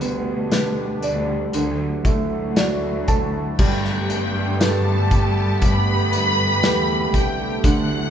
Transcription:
Already playing: cello section D2, analog synth pad B2 D3 G3 D4 G4, grand piano D3
0.01 grand piano B3, closed hi-hat
0.52 grand piano B4, snare, closed hi-hat
1.03 cello section D2, grand piano D5, closed hi-hat
1.53 cello section D2, grand piano D3, analog synth pad F#3 A3 E4 F#4, closed hi-hat
2.05 cello section D2, grand piano A3, kick, closed hi-hat
2.56 grand piano F#4 D5, snare, closed hi-hat
3.08 grand piano A4 A5, kick, closed hi-hat
3.59 cello section G2, analog synth pad D3 G3 A3 B3 G4, grand piano G3, violin section G4 G5, kick, crash
3.85 snare
4.10 closed hi-hat
4.60 grand piano G4 A4 B4, violin section A4 A5, snare, closed hi-hat
5.11 kick, closed hi-hat
5.62 cello section G2, violin section B4 B5, kick, closed hi-hat
6.13 closed hi-hat
6.63 cello section E2, grand piano G4 A4 B4, snare, closed hi-hat
7.14 cello section C2, violin section G4 G5, kick, closed hi-hat
7.64 cello section D2, grand piano D3, analog synth pad F#3 E4 F#4, violin section F#5 F#6, kick, closed hi-hat

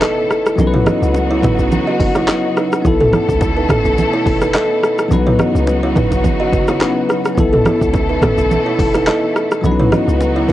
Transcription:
Already playing: string section B2 E3 A3 E4 A4, tine electric piano B3 E4 A4, impact
0.02 kalimba A4 D#5, cross-stick, clap, high bongo, shaker
0.31 cross-stick, shaker
0.46 cross-stick, shaker
0.56 log drum bass B1, string section C#3 F#3 B3 D#4 F#4, tine electric piano F#3 B3 C#4 D#4, low conga, shaker
0.61 tine electric piano A#4
0.67 tine electric piano B4
0.74 kalimba E4 C#5, mid tom
0.86 kalimba F#4 D#5, cross-stick, low bongo, low conga, shaker
1.02 log drum bass C#2, shaker
1.15 high bongo, shaker
1.31 kalimba E4 C#5
1.42 kalimba D#4 B4, kick, mid tom, low bongo, shaker
1.59 log drum bass B1, shaker
1.72 low conga, shaker
1.87 kalimba F#4 D#5
2.00 log drum bass F#1, tine electric piano F#5, kick, open hi-hat, high bongo, shaker
2.15 kalimba E4 C#5, cross-stick, low bongo, shaker
2.28 tine electric piano D#5, cross-stick, clap, high bongo, shaker
2.57 kalimba D#4 B4, cross-stick, shaker
2.72 cross-stick, shaker
2.82 log drum bass B1, string section B2 E3 A3 E4 A4, tine electric piano B3 E4, kick, low conga, shaker
2.87 tine electric piano A4
3.00 kalimba C#4 A4, mid tom
3.13 kalimba E4 C#5, cross-stick, low bongo, low conga, shaker
3.29 log drum bass C#2, kick, shaker
3.41 kick, high bongo, shaker
3.57 kalimba D#4 B4
3.69 kalimba C#4 A4, kick, cross-stick, mid tom, low bongo, shaker
3.85 log drum bass B1, shaker
3.98 low conga, shaker
4.13 kalimba E4 C#5
4.26 log drum bass E1, kick, open hi-hat, high bongo, shaker
4.41 kalimba D#4 B4, cross-stick, low bongo, shaker
4.54 kalimba A4 D#5, cross-stick, clap, high bongo, shaker
4.83 cross-stick, shaker
4.98 cross-stick, shaker
5.08 log drum bass B1, string section C#3 F#3 B3 D#4 F#4, tine electric piano F#3 B3 C#4 D#4, low conga, shaker
5.13 tine electric piano B4
5.27 kalimba E4 C#5, mid tom
5.39 kalimba F#4 D#5, cross-stick, low bongo, low conga, shaker
5.55 log drum bass C#2, shaker
5.67 high bongo, shaker
5.83 kalimba E4 C#5
5.95 kalimba D#4 B4, kick, mid tom, low bongo, shaker
6.12 log drum bass B1, high bongo, shaker
6.24 kick, low conga, shaker
6.40 kalimba F#4 D#5
6.52 log drum bass F#1, kick, high bongo, shaker
6.67 kalimba E4 C#5, cross-stick, low bongo, shaker
6.80 tine electric piano F#3 B3 C#4 D#4 B4, cross-stick, clap, high bongo, shaker
7.09 kalimba D#4 B4, cross-stick, shaker
7.25 cross-stick, shaker
7.35 log drum bass B1, string section B2 E3 A3 E4 A4, tine electric piano B3 E4, kick, low conga, shaker
7.40 tine electric piano A4
7.53 kalimba C#4 A4, mid tom
7.65 kalimba E4 C#5, cross-stick, low bongo, low conga, shaker
7.81 log drum bass C#2, kick, shaker
7.94 kick, high bongo, shaker
8.09 kalimba D#4 B4
8.22 kalimba C#4 A4, kick, cross-stick, mid tom, low bongo, shaker
8.38 log drum bass B1, shaker
8.51 low conga, shaker
8.66 kalimba E4 C#5
8.79 log drum bass E1, kick, open hi-hat, high bongo, shaker
8.94 kalimba D#4 B4, cross-stick, low bongo, shaker
9.07 kalimba A4 D#5, cross-stick, clap, high bongo, shaker
9.36 cross-stick, shaker
9.51 cross-stick, shaker
9.61 log drum bass B1, string section C#3 F#3 B3 D#4 F#4, tine electric piano F#3 B3 C#4 D4, shaker
9.65 tine electric piano B4, low conga
9.71 tine electric piano D#4
9.80 kalimba E4 C#5, mid tom
9.92 kalimba F#4 D#5, cross-stick, low bongo, low conga, shaker
10.08 log drum bass C#2, shaker
10.20 high bongo, shaker
10.36 kalimba E4 C#5
10.48 kalimba D#4 B4, kick, mid tom, shaker

